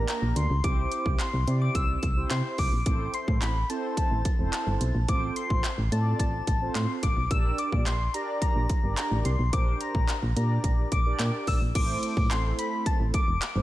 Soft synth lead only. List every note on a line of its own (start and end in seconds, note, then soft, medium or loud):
0.09 0.38 A#5 loud
0.37 0.66 C6 loud
0.64 1.21 D6 loud
1.20 1.63 C6 loud
1.62 1.77 D6 loud
1.75 2.33 E6 loud
2.31 2.61 C6 loud
2.59 3.16 D6 loud
3.14 3.42 C6 medium
3.42 3.68 B5 loud
3.70 3.96 A5 medium
3.98 4.49 A5 loud
4.53 5.10 A5 loud
5.09 5.36 D6 loud
5.36 5.88 C6 medium
5.92 6.18 A5 medium
6.20 6.77 A5 loud
6.76 7.05 C6 medium
7.03 7.33 D6 loud
7.31 7.60 E6 loud
7.59 7.88 D6 medium
7.87 8.16 C6 medium
8.14 8.41 A#5 medium
8.42 8.94 A#5 loud
8.98 9.23 A#5 medium
9.25 9.55 C6 loud
9.53 9.82 D6 loud
9.81 10.36 A#5 loud
10.37 10.88 A#5 medium
10.92 11.44 D6 loud
11.48 11.60 E6 loud
11.75 12.33 D6 loud
12.31 12.61 C6 loud
12.59 12.86 B5 loud
12.87 12.99 A5 loud
13.14 13.62 D6 loud